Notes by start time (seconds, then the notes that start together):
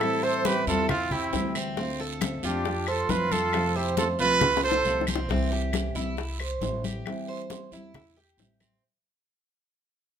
Already playing: A2 E4 G4 A4
0.00 E3 G3 C4 E4, high bongo, high conga, long guiro, claves
0.23 A4 C5, high bongo, high conga
0.45 E3 G3 C4 E4 G4 B4, high bongo, high conga, short guiro
0.67 E2 G3 C4 E4 F4 A4, high conga, short guiro
0.89 C4 F4, high bongo, high conga, low conga, long guiro, claves
1.11 C4 E4 G4, high bongo, high conga, low conga
1.33 D2 E3 G3 C4 E4, high bongo, low bongo, high conga, short guiro
1.55 C4, high bongo, short guiro, claves
1.77 D3 A3 C4 F4, high bongo, high conga, long guiro
1.99 A4, high bongo, high conga
2.21 D3 A3 C4 F4, high bongo, high conga, short guiro, claves
2.43 F2 A3 C4 D4 F4 G4, high conga, short guiro
2.65 muted nylon-string guitar stroke, high bongo, high conga, long guiro
2.87 F4 A4 C5, high bongo, high conga, claves
3.09 F2 D3 A3 C4 F4 B4, high bongo, low bongo, high conga, short guiro
3.32 F4 A4, high bongo, high conga, short guiro
3.53 C3 F3 A3 C4 F4, high bongo, high conga, long guiro, claves
3.75 E4 G4 C5, high bongo, high conga
3.97 F3 A3 C4 F4 A4, high bongo, high conga, short guiro
4.19 C2 F3 A3 C4 F4 B4, high conga, short guiro
4.40 muted nylon-string guitar stroke, high bongo, high conga, low conga, long guiro, claves
4.57 high bongo
4.64 A4 C5, high conga
4.72 low bongo
4.84 C2 F3 A3 C4 F4, high conga, short guiro
5.01 low bongo
5.07 C4, high conga, short guiro, claves
5.15 low bongo
5.29 C2 C3 E3 G3 C4 E4, high bongo, high conga, long guiro
5.52 G4, high bongo, high conga
5.73 E3 G3 C4 E4, high bongo, high conga, short guiro, claves
5.95 C2 E3 G3 C4 E4, high conga, short guiro
6.17 muted nylon-string guitar stroke, high bongo, high conga, long guiro
6.40 C5, high bongo, high conga, claves
6.61 A1 E3 G3 C4 E4, high bongo, low bongo, high conga, short guiro
6.84 G4, high bongo, high conga, short guiro
7.05 E3 G3 C4 E4, high bongo, high conga, long guiro, claves
7.28 C5, high bongo, high conga
7.50 E3 G3 C4 E4, high bongo, high conga, short guiro
7.71 E2 G3 C4 E4, high conga, short guiro
7.94 muted nylon-string guitar stroke, high bongo, high conga, low conga, long guiro, claves
8.17 G4, high bongo, high conga
8.37 A1 E3 G3 C4 E4, high bongo, low bongo, high conga, short guiro
8.60 C4, high bongo, high conga, short guiro, claves